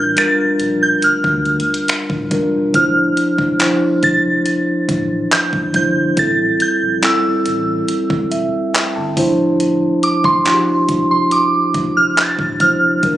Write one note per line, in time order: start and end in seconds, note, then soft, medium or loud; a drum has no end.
0.00 0.14 A1 medium
0.00 0.16 G3 medium
0.00 0.17 D4 medium
0.00 0.18 F4 medium
0.00 0.19 A#4 medium
0.00 0.18 G6 medium
0.16 1.71 G3 medium
0.16 1.71 D4 medium
0.16 1.72 F4 medium
0.16 1.72 A#4 medium
0.16 0.84 A6 medium
0.16 finger snap loud
0.16 closed hi-hat medium
0.39 0.48 A#1 soft
0.60 0.96 A#1 medium
0.60 closed hi-hat medium
0.83 1.04 G6 medium
1.02 1.12 D2 soft
1.02 1.85 F6 medium
1.02 closed hi-hat medium
1.24 1.60 D2 medium
1.24 kick loud
1.45 closed hi-hat soft
1.60 closed hi-hat soft
1.74 closed hi-hat medium
1.88 finger snap loud
1.88 closed hi-hat medium
2.10 2.28 A1 medium
2.10 kick medium
2.30 2.68 E1 medium
2.30 2.69 G3 medium
2.30 2.70 D4 medium
2.30 2.70 F4 medium
2.30 2.71 A#4 medium
2.30 kick medium
2.30 closed hi-hat medium
2.73 3.10 D1 loud
2.73 3.51 F3 medium
2.73 3.51 D4 medium
2.73 3.52 E4 medium
2.73 3.52 C5 medium
2.73 3.99 F6 medium
2.73 kick loud
2.73 closed hi-hat medium
3.17 closed hi-hat medium
3.38 3.57 F1 medium
3.38 kick medium
3.59 5.14 F3 medium
3.59 5.14 D4 medium
3.59 5.15 E4 medium
3.59 5.15 C5 medium
3.59 clap loud
3.59 closed hi-hat medium
3.82 3.91 F1 soft
4.03 4.39 F1 loud
4.03 4.85 A6 loud
4.03 kick medium
4.03 closed hi-hat medium
4.46 closed hi-hat medium
4.89 5.25 A1 medium
4.89 kick medium
4.89 closed hi-hat medium
5.31 5.75 G6 medium
5.31 clap loud
5.31 closed hi-hat medium
5.53 5.71 G1 medium
5.53 kick medium
5.73 6.10 G1 medium
5.73 6.12 F3 medium
5.73 6.13 D4 medium
5.73 6.13 E4 medium
5.73 6.14 C5 medium
5.73 6.19 G6 medium
5.73 kick medium
5.73 closed hi-hat medium
6.16 6.53 A1 loud
6.16 6.94 G3 medium
6.16 6.94 C4 medium
6.16 6.95 E4 medium
6.16 6.95 A4 medium
6.16 6.62 A6 loud
6.16 kick loud
6.16 closed hi-hat medium
6.60 6.76 G6 loud
6.60 closed hi-hat medium
6.82 7.00 A#1 medium
7.01 8.56 G3 medium
7.01 8.57 C4 medium
7.01 8.58 E4 medium
7.01 8.58 A4 medium
7.01 9.14 E6 medium
7.01 clap loud
7.01 closed hi-hat medium
7.25 7.33 A1 soft
7.46 7.82 A1 loud
7.46 closed hi-hat medium
7.88 7.98 E1 soft
7.88 closed hi-hat medium
8.10 8.46 E1 medium
8.10 kick loud
8.31 8.71 E5 medium
8.31 closed hi-hat medium
8.74 8.94 G5 medium
8.74 clap loud
8.74 closed hi-hat medium
8.96 9.14 G1 medium
8.96 9.56 A5 medium
9.16 9.89 D1 medium
9.16 10.32 F3 medium
9.16 10.33 D4 medium
9.16 10.33 E4 medium
9.16 10.34 C5 loud
9.16 kick loud
9.16 open hi-hat medium
9.60 closed hi-hat medium
10.03 10.25 D6 medium
10.03 closed hi-hat medium
10.24 10.43 D1 medium
10.24 11.10 C6 medium
10.24 kick loud
10.44 11.99 F3 medium
10.44 12.00 D4 medium
10.44 12.00 E4 medium
10.44 10.53 F#4 medium
10.44 clap loud
10.44 closed hi-hat medium
10.54 12.04 G4 medium
10.68 10.76 F1 soft
10.89 11.25 F1 medium
10.89 kick medium
10.89 closed hi-hat medium
11.11 11.33 C6 medium
11.31 11.98 D6 medium
11.31 closed hi-hat medium
11.74 12.11 F1 medium
11.74 kick medium
11.74 closed hi-hat medium
11.97 12.06 F6 loud
12.17 12.32 A6 loud
12.17 clap loud
12.17 closed hi-hat medium
12.39 12.57 A1 medium
12.39 kick medium
12.59 12.96 F1 medium
12.59 12.98 F3 medium
12.59 12.99 D4 medium
12.59 12.99 E4 medium
12.59 13.00 C5 medium
12.59 13.17 F6 loud
12.59 kick medium
12.59 closed hi-hat medium
13.02 13.17 G1 loud
13.02 13.17 G3 medium
13.02 13.17 D4 medium
13.02 13.17 F4 medium
13.02 13.17 A#4 medium
13.02 kick loud
13.02 closed hi-hat medium